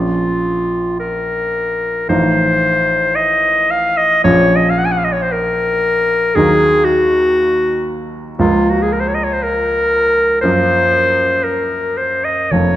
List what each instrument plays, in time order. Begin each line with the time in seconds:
Already playing: grand piano A#1 F3 C#4, clarinet F4
1.00 clarinet A#4
2.09 grand piano A1 F3 D#4 F4, clarinet C5
3.15 clarinet D#5
3.71 clarinet F5
3.97 clarinet D#5
4.24 grand piano A#1 F3 C#4 F4, clarinet C#5
4.56 clarinet D#5
4.70 clarinet F5
4.78 clarinet F#5
4.85 clarinet G#5
4.92 clarinet F#5
4.98 clarinet F5
5.04 clarinet D#5
5.12 clarinet C#5
5.22 clarinet C5
5.32 clarinet A#4
6.35 grand piano D#2 F#3 A#3 D#4, clarinet G#4
6.85 clarinet F#4
8.39 grand piano C#2 F3 A#3 F4, clarinet F4
8.70 clarinet F#4
8.82 clarinet G#4
8.92 clarinet A#4
9.00 clarinet C5
9.08 clarinet C#5
9.14 clarinet D#5
9.23 clarinet C#5
9.33 clarinet C5
9.43 clarinet A#4
10.41 grand piano F#2 F3 A#3 F4, clarinet C5
11.44 clarinet A#4
11.97 clarinet C5
12.24 clarinet D#5
12.51 grand piano F1 F2 F3 A#3 F4, clarinet C#5